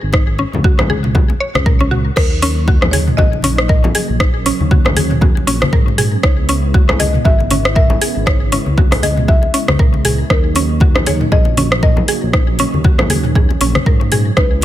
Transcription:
0.03 G#1
0.13 D#4, kick, cross-stick, muted conga
0.39 C#4, muted conga
0.53 C#2, high conga, low conga
0.64 F#4, kick, muted conga, high conga
0.79 cross-stick, low conga
0.90 G#4, high conga
1.04 mid tom, muted conga
1.15 F#4, kick, low conga
1.30 muted conga
1.40 C#5
1.55 C#2, cross-stick, muted conga, high conga
1.66 A#4, kick, mid tom
1.80 C#4, muted conga
1.91 F#4, mid tom
2.16 D#2 C#3 F#3 A#3 D#4 A#4, kick, cross-stick, crash, muted conga
2.42 C#4, open hi-hat, muted conga
2.68 F#4, kick, muted conga, high conga
2.82 cross-stick, low conga
2.91 G#4 C#5, open hi-hat, high conga
3.08 mid tom, muted conga
3.17 A#1 F#4 D#5, kick, low conga
3.33 muted conga
3.42 C#4, open hi-hat, high conga
3.58 cross-stick, muted conga
3.68 A#4 D#5, kick, mid tom
3.84 muted conga, low conga
3.95 G#4, open hi-hat
4.09 A#1
4.20 C#4 D#4, kick, cross-stick, muted conga
4.46 C#4, open hi-hat, muted conga
4.60 D#2, high conga
4.71 F#4, kick, muted conga, high conga
4.85 cross-stick, low conga
4.97 G#4, open hi-hat, high conga
5.11 mid tom, muted conga
5.21 F#4, kick, low conga
5.37 muted conga
5.47 A#1 C#4, open hi-hat
5.62 cross-stick, muted conga, high conga
5.73 G#2 A#4, kick, mid tom
5.88 muted conga
5.98 G#4, mid tom, open hi-hat
6.23 C#2 C#3 G#3 B3 D#4 E4 C#5, kick, cross-stick, muted conga
6.49 C#4, open hi-hat, muted conga
6.74 F#4, kick, muted conga, high conga
6.89 cross-stick, low conga
6.99 G#4 D#5, open hi-hat, high conga
7.14 mid tom, muted conga
7.25 G#1 F#4 E5, kick, low conga
7.40 muted conga
7.51 C#4, open hi-hat, high conga
7.65 cross-stick, muted conga
7.76 A#4 E5, kick, mid tom
7.90 muted conga, low conga
8.01 G#4, open hi-hat
8.16 G#1
8.26 D#4 C#5, kick, cross-stick, muted conga
8.52 C#4, open hi-hat, muted conga
8.66 C#2, high conga
8.78 F#4, kick, muted conga, high conga
8.92 cross-stick, open hi-hat, low conga
9.03 G#4 D#5, open hi-hat, high conga
9.17 mid tom, muted conga
9.28 F#4 E5, kick, low conga
9.43 muted conga
9.54 C#4, open hi-hat
9.68 C#2, cross-stick, muted conga, high conga
9.79 A#4, kick, mid tom
9.94 muted conga
10.05 G#4, mid tom, open hi-hat
10.30 D#2 C#3 F#3 A#3 D#4 A#4, kick, cross-stick, muted conga
10.55 C#4, open hi-hat, muted conga
10.80 F#4, kick, muted conga, high conga
10.95 cross-stick, low conga
11.06 G#4 C#5, open hi-hat, high conga
11.21 mid tom, muted conga
11.32 A#1 G#4 D#5, kick, low conga
11.45 muted conga
11.57 C#4, open hi-hat, high conga
11.72 cross-stick, muted conga
11.83 A#4 D#5, kick, mid tom
11.97 muted conga, low conga
12.08 G#4, open hi-hat
12.23 A#1
12.33 C#4 D#4, kick, cross-stick, muted conga
12.59 C#4, open hi-hat, muted conga
12.74 D#2, high conga
12.84 F#4, kick, muted conga, high conga
12.99 cross-stick, low conga
13.10 G#4, open hi-hat, high conga
13.24 mid tom, muted conga
13.35 G#4, kick, low conga
13.51 muted conga
13.61 A#1 C#4, open hi-hat
13.75 cross-stick, muted conga, high conga
13.86 G#2 A#4, kick, mid tom
14.01 muted conga
14.12 G#4, mid tom, open hi-hat
14.37 C#2 G#3 B3 D#4 E4 B4, kick, cross-stick, muted conga
14.61 muted conga

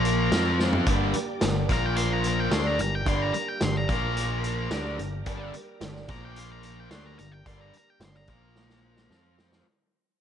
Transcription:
Already playing: A#1 A#2 F3 A#3 A#5
0.04 F4 A#4 F5, closed hi-hat
0.32 F2 F3 C4 F4 C5, snare, closed hi-hat
0.57 C4 D4 F4 C5, snare
0.62 C4 E4
0.66 F4 G4
0.71 A4 B4, floor tom
0.78 C5 D5
0.83 G2 D3 G3 E5 F5, closed hi-hat
0.87 G1 G2 D3 G3 A#3 D4 G4 A#4 D5, kick
1.13 G3 A#3 G4 A#4, muted overdriven electric guitar stroke, muted distorted electric guitar stroke, muted picked electric bass stroke, closed hi-hat
1.40 G1 G2 D3 G3 A#3 G4 A#4, snare, closed hi-hat
1.68 A#1 A#2 F3 A#3 F4 A#4 F5, kick, closed hi-hat
1.73 A#5
1.86 G5
1.96 A#3 F4 A#4 F5 C6, closed hi-hat
2.13 A#5
2.24 F4 A#4 F5 A#5, closed hi-hat
2.40 G5
2.51 D2 D3 G3 A3 A#3 D4 G4 A#4 D5 C6, snare, closed hi-hat
2.67 A#5
2.78 G1 G2 D3 G4 A#4 D5 A#5, closed hi-hat
2.95 G5
3.06 G1 G2 D3 G3 D4 G4 A#4 D5 C6, kick, closed hi-hat
3.22 A#5
3.34 G4 A#4 D5 A#5, muted picked electric bass stroke, muted distorted electric guitar stroke, muted overdriven electric guitar stroke, closed hi-hat
3.48 G5
3.61 G1 G2 D3 G3 D4 G4 A#4 D5 C6, snare, closed hi-hat
3.77 A#5
3.88 A#1 A#2 F3 A#3 F4 A#4 F5 A#5, kick, closed hi-hat
4.16 A#3 F4 A#4 F5, closed hi-hat
4.43 F4 A#4 F5, closed hi-hat
4.71 D2 D3 G3 A3 A#3 D4 G4 A#4 D5, snare, closed hi-hat
4.99 G1 G2 D3 G4 A#4, closed hi-hat
5.26 G1 G2 D3 G3 D4 G4 A#4 D5, kick, closed hi-hat
5.54 G4 A#4 D5, muted distorted electric guitar stroke, muted overdriven electric guitar stroke, closed hi-hat
5.81 G1 G2 D3 G3 D4 G4 A#4 D5, snare, closed hi-hat
5.96 snare
6.08 A#1 A#2 F3 A#3 F4 A#4 A#5, kick, closed hi-hat
6.25 G5
6.36 A#3 F4 A#4 F5 C6, closed hi-hat
6.52 A#5
6.62 F4 A#4 F5 A#5, closed hi-hat
6.80 G5
6.91 D2 D3 G3 A3 A#3 D4 G4 A#4 D5 C6, snare, closed hi-hat
7.06 A#5
7.18 G1 G2 D3 G4 A#4 D5 A#5, closed hi-hat
7.32 G5
7.46 G1 G2 D3 G3 D4 G4 A#4 D5 C6, kick, closed hi-hat
7.61 A#5
7.73 G4 A#4 D5, muted overdriven electric guitar stroke, muted distorted electric guitar stroke, closed hi-hat
7.77 A#5
7.90 G5
8.00 G1 G2 D3 G3 D4 G4 A#4 D5, snare, closed hi-hat
8.05 C6
8.14 A#5, snare
8.27 A#1 A#2 F3 A#3 F4 A#4 F5 A#5, kick, closed hi-hat
8.55 A#3 F4 A#4 F5, snare
8.70 snare
8.83 F4 A#4 F5
8.97 snare
9.09 F2 F3 C4 F4 C5, snare
9.37 C4 F4 C5, snare
9.52 snare

